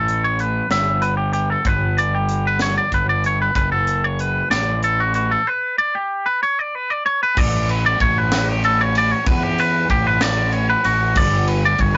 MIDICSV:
0, 0, Header, 1, 4, 480
1, 0, Start_track
1, 0, Tempo, 634249
1, 1252, Time_signature, 6, 3, 24, 8
1, 9060, End_track
2, 0, Start_track
2, 0, Title_t, "Clean electric guitar"
2, 0, Program_c, 0, 27
2, 0, Note_on_c, 0, 69, 63
2, 174, Note_off_c, 0, 69, 0
2, 184, Note_on_c, 0, 73, 61
2, 304, Note_off_c, 0, 73, 0
2, 304, Note_on_c, 0, 71, 69
2, 537, Note_off_c, 0, 71, 0
2, 540, Note_on_c, 0, 76, 69
2, 770, Note_on_c, 0, 71, 74
2, 776, Note_off_c, 0, 76, 0
2, 883, Note_off_c, 0, 71, 0
2, 886, Note_on_c, 0, 67, 66
2, 1000, Note_off_c, 0, 67, 0
2, 1009, Note_on_c, 0, 67, 67
2, 1134, Note_off_c, 0, 67, 0
2, 1134, Note_on_c, 0, 69, 68
2, 1261, Note_off_c, 0, 69, 0
2, 1261, Note_on_c, 0, 71, 79
2, 1497, Note_off_c, 0, 71, 0
2, 1502, Note_on_c, 0, 74, 70
2, 1617, Note_off_c, 0, 74, 0
2, 1624, Note_on_c, 0, 67, 67
2, 1859, Note_off_c, 0, 67, 0
2, 1870, Note_on_c, 0, 71, 61
2, 1980, Note_off_c, 0, 71, 0
2, 1983, Note_on_c, 0, 73, 73
2, 2097, Note_off_c, 0, 73, 0
2, 2100, Note_on_c, 0, 74, 63
2, 2217, Note_off_c, 0, 74, 0
2, 2226, Note_on_c, 0, 71, 74
2, 2337, Note_off_c, 0, 71, 0
2, 2340, Note_on_c, 0, 74, 65
2, 2457, Note_off_c, 0, 74, 0
2, 2469, Note_on_c, 0, 73, 70
2, 2582, Note_off_c, 0, 73, 0
2, 2586, Note_on_c, 0, 71, 65
2, 2685, Note_off_c, 0, 71, 0
2, 2694, Note_on_c, 0, 71, 80
2, 2811, Note_off_c, 0, 71, 0
2, 2814, Note_on_c, 0, 69, 70
2, 3059, Note_off_c, 0, 69, 0
2, 3059, Note_on_c, 0, 73, 61
2, 3181, Note_off_c, 0, 73, 0
2, 3181, Note_on_c, 0, 71, 73
2, 3410, Note_off_c, 0, 71, 0
2, 3413, Note_on_c, 0, 74, 76
2, 3654, Note_off_c, 0, 74, 0
2, 3663, Note_on_c, 0, 69, 77
2, 3779, Note_off_c, 0, 69, 0
2, 3785, Note_on_c, 0, 66, 69
2, 3890, Note_off_c, 0, 66, 0
2, 3899, Note_on_c, 0, 66, 73
2, 4017, Note_off_c, 0, 66, 0
2, 4021, Note_on_c, 0, 69, 67
2, 4141, Note_off_c, 0, 69, 0
2, 4141, Note_on_c, 0, 71, 81
2, 4374, Note_off_c, 0, 71, 0
2, 4377, Note_on_c, 0, 74, 72
2, 4497, Note_off_c, 0, 74, 0
2, 4503, Note_on_c, 0, 67, 64
2, 4736, Note_on_c, 0, 71, 62
2, 4739, Note_off_c, 0, 67, 0
2, 4856, Note_off_c, 0, 71, 0
2, 4864, Note_on_c, 0, 73, 78
2, 4987, Note_off_c, 0, 73, 0
2, 4987, Note_on_c, 0, 74, 66
2, 5108, Note_off_c, 0, 74, 0
2, 5108, Note_on_c, 0, 71, 75
2, 5224, Note_off_c, 0, 71, 0
2, 5224, Note_on_c, 0, 74, 71
2, 5338, Note_off_c, 0, 74, 0
2, 5341, Note_on_c, 0, 73, 74
2, 5458, Note_off_c, 0, 73, 0
2, 5470, Note_on_c, 0, 71, 70
2, 5583, Note_off_c, 0, 71, 0
2, 5583, Note_on_c, 0, 74, 88
2, 5830, Note_off_c, 0, 74, 0
2, 5830, Note_on_c, 0, 71, 74
2, 5942, Note_off_c, 0, 71, 0
2, 5949, Note_on_c, 0, 74, 70
2, 6062, Note_off_c, 0, 74, 0
2, 6065, Note_on_c, 0, 73, 76
2, 6191, Note_off_c, 0, 73, 0
2, 6191, Note_on_c, 0, 71, 70
2, 6422, Note_off_c, 0, 71, 0
2, 6422, Note_on_c, 0, 67, 74
2, 6538, Note_off_c, 0, 67, 0
2, 6545, Note_on_c, 0, 69, 85
2, 6667, Note_off_c, 0, 69, 0
2, 6667, Note_on_c, 0, 73, 77
2, 6780, Note_off_c, 0, 73, 0
2, 6795, Note_on_c, 0, 74, 85
2, 6898, Note_off_c, 0, 74, 0
2, 6898, Note_on_c, 0, 73, 74
2, 7014, Note_off_c, 0, 73, 0
2, 7014, Note_on_c, 0, 71, 88
2, 7138, Note_off_c, 0, 71, 0
2, 7138, Note_on_c, 0, 67, 73
2, 7263, Note_off_c, 0, 67, 0
2, 7263, Note_on_c, 0, 71, 84
2, 7495, Note_off_c, 0, 71, 0
2, 7498, Note_on_c, 0, 67, 80
2, 7619, Note_off_c, 0, 67, 0
2, 7619, Note_on_c, 0, 71, 74
2, 7733, Note_off_c, 0, 71, 0
2, 7733, Note_on_c, 0, 74, 91
2, 7965, Note_off_c, 0, 74, 0
2, 7965, Note_on_c, 0, 73, 86
2, 8087, Note_off_c, 0, 73, 0
2, 8094, Note_on_c, 0, 71, 76
2, 8211, Note_on_c, 0, 66, 79
2, 8212, Note_off_c, 0, 71, 0
2, 8450, Note_off_c, 0, 66, 0
2, 8456, Note_on_c, 0, 74, 88
2, 8689, Note_off_c, 0, 74, 0
2, 8689, Note_on_c, 0, 71, 74
2, 8808, Note_off_c, 0, 71, 0
2, 8820, Note_on_c, 0, 74, 75
2, 8932, Note_off_c, 0, 74, 0
2, 8932, Note_on_c, 0, 73, 85
2, 9050, Note_off_c, 0, 73, 0
2, 9060, End_track
3, 0, Start_track
3, 0, Title_t, "Fingered electric bass"
3, 0, Program_c, 1, 33
3, 0, Note_on_c, 1, 33, 82
3, 444, Note_off_c, 1, 33, 0
3, 526, Note_on_c, 1, 31, 77
3, 1163, Note_off_c, 1, 31, 0
3, 1249, Note_on_c, 1, 31, 97
3, 2097, Note_off_c, 1, 31, 0
3, 2210, Note_on_c, 1, 31, 69
3, 2635, Note_off_c, 1, 31, 0
3, 2687, Note_on_c, 1, 30, 81
3, 3325, Note_off_c, 1, 30, 0
3, 3407, Note_on_c, 1, 33, 88
3, 4045, Note_off_c, 1, 33, 0
3, 5578, Note_on_c, 1, 33, 96
3, 5999, Note_off_c, 1, 33, 0
3, 6055, Note_on_c, 1, 33, 105
3, 6898, Note_off_c, 1, 33, 0
3, 7013, Note_on_c, 1, 40, 96
3, 7435, Note_off_c, 1, 40, 0
3, 7492, Note_on_c, 1, 33, 91
3, 8124, Note_off_c, 1, 33, 0
3, 8210, Note_on_c, 1, 33, 99
3, 8421, Note_off_c, 1, 33, 0
3, 8445, Note_on_c, 1, 31, 101
3, 8868, Note_off_c, 1, 31, 0
3, 8919, Note_on_c, 1, 31, 106
3, 9060, Note_off_c, 1, 31, 0
3, 9060, End_track
4, 0, Start_track
4, 0, Title_t, "Drums"
4, 62, Note_on_c, 9, 42, 49
4, 137, Note_off_c, 9, 42, 0
4, 295, Note_on_c, 9, 42, 52
4, 371, Note_off_c, 9, 42, 0
4, 534, Note_on_c, 9, 42, 70
4, 535, Note_on_c, 9, 38, 94
4, 610, Note_off_c, 9, 38, 0
4, 610, Note_off_c, 9, 42, 0
4, 771, Note_on_c, 9, 42, 62
4, 847, Note_off_c, 9, 42, 0
4, 1008, Note_on_c, 9, 42, 54
4, 1084, Note_off_c, 9, 42, 0
4, 1248, Note_on_c, 9, 42, 79
4, 1249, Note_on_c, 9, 36, 107
4, 1324, Note_off_c, 9, 42, 0
4, 1325, Note_off_c, 9, 36, 0
4, 1497, Note_on_c, 9, 42, 54
4, 1573, Note_off_c, 9, 42, 0
4, 1731, Note_on_c, 9, 42, 63
4, 1806, Note_off_c, 9, 42, 0
4, 1963, Note_on_c, 9, 42, 79
4, 1964, Note_on_c, 9, 38, 99
4, 2039, Note_off_c, 9, 38, 0
4, 2039, Note_off_c, 9, 42, 0
4, 2210, Note_on_c, 9, 36, 72
4, 2212, Note_on_c, 9, 42, 60
4, 2286, Note_off_c, 9, 36, 0
4, 2287, Note_off_c, 9, 42, 0
4, 2452, Note_on_c, 9, 42, 56
4, 2528, Note_off_c, 9, 42, 0
4, 2688, Note_on_c, 9, 42, 75
4, 2689, Note_on_c, 9, 36, 105
4, 2764, Note_off_c, 9, 42, 0
4, 2765, Note_off_c, 9, 36, 0
4, 2930, Note_on_c, 9, 42, 56
4, 3006, Note_off_c, 9, 42, 0
4, 3172, Note_on_c, 9, 42, 57
4, 3247, Note_off_c, 9, 42, 0
4, 3414, Note_on_c, 9, 42, 71
4, 3415, Note_on_c, 9, 38, 100
4, 3489, Note_off_c, 9, 42, 0
4, 3490, Note_off_c, 9, 38, 0
4, 3652, Note_on_c, 9, 42, 54
4, 3728, Note_off_c, 9, 42, 0
4, 3890, Note_on_c, 9, 42, 55
4, 3966, Note_off_c, 9, 42, 0
4, 5578, Note_on_c, 9, 36, 121
4, 5578, Note_on_c, 9, 49, 125
4, 5654, Note_off_c, 9, 36, 0
4, 5654, Note_off_c, 9, 49, 0
4, 5821, Note_on_c, 9, 51, 76
4, 5896, Note_off_c, 9, 51, 0
4, 6057, Note_on_c, 9, 36, 85
4, 6059, Note_on_c, 9, 51, 78
4, 6133, Note_off_c, 9, 36, 0
4, 6135, Note_off_c, 9, 51, 0
4, 6294, Note_on_c, 9, 51, 109
4, 6295, Note_on_c, 9, 38, 120
4, 6370, Note_off_c, 9, 51, 0
4, 6371, Note_off_c, 9, 38, 0
4, 6536, Note_on_c, 9, 51, 80
4, 6612, Note_off_c, 9, 51, 0
4, 6774, Note_on_c, 9, 51, 73
4, 6850, Note_off_c, 9, 51, 0
4, 7010, Note_on_c, 9, 51, 102
4, 7012, Note_on_c, 9, 36, 117
4, 7086, Note_off_c, 9, 51, 0
4, 7088, Note_off_c, 9, 36, 0
4, 7253, Note_on_c, 9, 51, 73
4, 7328, Note_off_c, 9, 51, 0
4, 7490, Note_on_c, 9, 36, 81
4, 7490, Note_on_c, 9, 51, 75
4, 7565, Note_off_c, 9, 51, 0
4, 7566, Note_off_c, 9, 36, 0
4, 7725, Note_on_c, 9, 51, 100
4, 7726, Note_on_c, 9, 38, 117
4, 7801, Note_off_c, 9, 51, 0
4, 7802, Note_off_c, 9, 38, 0
4, 7964, Note_on_c, 9, 51, 77
4, 8040, Note_off_c, 9, 51, 0
4, 8207, Note_on_c, 9, 51, 74
4, 8283, Note_off_c, 9, 51, 0
4, 8440, Note_on_c, 9, 49, 106
4, 8446, Note_on_c, 9, 36, 114
4, 8516, Note_off_c, 9, 49, 0
4, 8521, Note_off_c, 9, 36, 0
4, 8684, Note_on_c, 9, 51, 77
4, 8760, Note_off_c, 9, 51, 0
4, 8918, Note_on_c, 9, 51, 77
4, 8924, Note_on_c, 9, 36, 77
4, 8994, Note_off_c, 9, 51, 0
4, 8999, Note_off_c, 9, 36, 0
4, 9060, End_track
0, 0, End_of_file